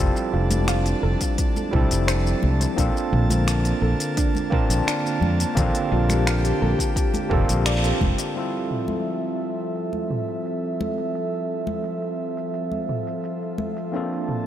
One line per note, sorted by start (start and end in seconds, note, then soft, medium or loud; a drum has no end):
0.00 1.74 F3 medium
0.00 1.71 G3 medium
0.00 1.73 C4 medium
0.00 2.75 D4 medium
0.00 1.74 E4 medium
0.00 1.70 F4 medium
0.00 1.76 A4 medium
0.00 2.74 A5 medium
0.16 shaker soft
0.33 0.93 F1 medium
0.33 0.65 F4 medium
0.51 closed hi-hat soft
0.51 high conga medium
0.51 shaker medium
0.68 1.00 F5 medium
0.68 finger snap medium
0.68 closed hi-hat medium
0.68 shaker medium
0.86 closed hi-hat soft
0.86 shaker soft
1.03 1.14 F1 medium
1.03 1.22 A4 medium
1.21 kick medium
1.21 closed hi-hat soft
1.21 shaker medium
1.38 kick loud
1.38 closed hi-hat medium
1.38 shaker medium
1.56 high conga medium
1.56 shaker soft
1.71 1.84 C2 medium
1.71 2.74 F3 medium
1.71 2.73 G3 medium
1.71 2.74 C4 medium
1.71 2.06 E4 medium
1.71 2.74 E4 medium
1.71 kick loud
1.71 mid tom medium
1.76 2.75 A4 medium
1.91 2.33 F1 loud
1.91 closed hi-hat soft
1.91 shaker medium
2.08 2.39 C5 loud
2.08 finger snap loud
2.08 closed hi-hat medium
2.08 shaker medium
2.27 shaker soft
2.43 2.65 C2 loud
2.43 high conga medium
2.61 closed hi-hat soft
2.61 shaker medium
2.76 2.89 A#1 loud
2.76 8.32 D3 medium
2.76 4.47 A#3 medium
2.76 8.32 A#3 medium
2.76 4.48 C4 medium
2.76 4.48 D4 medium
2.76 3.11 D4 medium
2.76 4.49 F4 medium
2.76 4.49 A4 medium
2.76 8.32 A5 medium
2.76 kick loud
2.76 closed hi-hat medium
2.76 shaker soft
2.97 shaker soft
3.13 3.72 A#1 medium
3.13 mid tom medium
3.30 closed hi-hat soft
3.30 high conga medium
3.30 shaker medium
3.48 finger snap medium
3.48 closed hi-hat medium
3.48 shaker medium
3.65 closed hi-hat soft
3.65 shaker soft
3.82 3.93 A#1 medium
3.82 4.02 A4 medium
4.00 closed hi-hat soft
4.00 shaker medium
4.17 4.49 D4 medium
4.17 kick loud
4.17 closed hi-hat medium
4.17 shaker soft
4.35 high conga medium
4.35 shaker soft
4.50 5.52 A#3 medium
4.50 5.52 C4 medium
4.50 5.53 D4 medium
4.50 5.53 F4 medium
4.50 4.86 A#4 medium
4.50 kick loud
4.50 mid tom medium
4.54 5.54 A5 medium
4.69 4.80 A#1 medium
4.69 closed hi-hat soft
4.69 shaker medium
4.87 5.19 D4 medium
4.87 finger snap loud
4.87 closed hi-hat medium
4.87 shaker medium
5.06 shaker soft
5.21 5.43 F2 medium
5.21 high conga medium
5.40 closed hi-hat soft
5.40 shaker medium
5.55 5.68 A#1 loud
5.55 7.27 A#3 medium
5.55 7.27 C4 medium
5.55 7.28 D4 medium
5.55 7.28 F4 medium
5.55 8.34 G4 medium
5.55 kick loud
5.55 closed hi-hat medium
5.55 low conga medium
5.55 shaker medium
5.59 7.29 A4 medium
5.75 closed hi-hat soft
5.75 shaker soft
5.92 6.51 A#1 medium
5.92 6.23 F4 medium
6.09 finger snap soft
6.09 closed hi-hat soft
6.09 high conga medium
6.09 shaker medium
6.27 6.58 F5 medium
6.27 finger snap loud
6.27 closed hi-hat medium
6.27 shaker medium
6.45 closed hi-hat soft
6.45 shaker soft
6.62 6.73 A#1 medium
6.62 6.81 A4 medium
6.79 kick medium
6.79 closed hi-hat soft
6.79 shaker medium
6.96 kick loud
6.96 closed hi-hat medium
6.96 shaker medium
7.14 closed hi-hat soft
7.14 high conga medium
7.14 shaker soft
7.29 7.42 F1 medium
7.29 8.31 A#3 medium
7.29 8.31 C4 medium
7.29 8.32 D4 medium
7.29 8.32 F4 medium
7.29 7.63 A4 medium
7.29 8.33 A4 loud
7.29 kick loud
7.29 mid tom medium
7.49 7.91 A#1 loud
7.49 closed hi-hat soft
7.49 shaker medium
7.66 7.99 D5 medium
7.66 finger snap loud
7.66 closed hi-hat medium
7.66 shaker medium
7.84 closed hi-hat soft
7.84 shaker soft
8.01 8.12 F1 medium
8.01 kick medium
8.01 high conga medium
8.18 closed hi-hat soft
8.18 shaker medium
8.34 14.47 F3 medium
8.34 13.89 G3 medium
8.34 13.90 C4 medium
8.34 13.90 E4 medium
8.34 13.91 F4 medium
8.34 13.91 A4 medium
8.34 13.90 E5 medium
8.34 closed hi-hat soft
8.34 shaker soft
8.39 13.91 A4 medium
8.54 shaker soft
8.71 mid tom medium
8.88 closed hi-hat soft
8.88 high conga medium
8.88 shaker medium
9.06 closed hi-hat soft
9.06 shaker soft
9.23 closed hi-hat soft
9.23 shaker soft
9.59 closed hi-hat soft
9.59 shaker medium
9.76 closed hi-hat soft
9.76 shaker soft
9.93 high conga medium
9.93 shaker soft
10.11 mid tom medium
10.29 closed hi-hat soft
10.29 shaker medium
10.46 closed hi-hat soft
10.46 shaker medium
10.64 shaker soft
10.81 high conga medium
10.98 closed hi-hat soft
10.98 shaker medium
11.15 closed hi-hat soft
11.15 shaker soft
11.33 shaker soft
11.67 closed hi-hat soft
11.67 high conga medium
11.67 shaker medium
11.84 closed hi-hat soft
11.84 shaker soft
12.02 closed hi-hat soft
12.02 shaker soft
12.37 closed hi-hat soft
12.37 shaker medium
12.54 closed hi-hat soft
12.54 shaker soft
12.72 high conga medium
12.72 shaker soft
12.89 mid tom medium
13.07 closed hi-hat soft
13.07 shaker medium
13.24 closed hi-hat soft
13.24 shaker medium
13.43 shaker soft
13.58 high conga medium
13.77 closed hi-hat soft
13.77 shaker medium
13.92 14.47 A#3 medium
13.92 14.47 C4 medium
13.92 14.27 D4 medium
13.92 14.47 D4 medium
13.92 14.47 F4 medium
13.92 14.47 A5 medium
13.92 closed hi-hat soft
13.92 shaker soft
13.96 14.47 A4 medium
14.12 shaker soft
14.29 mid tom soft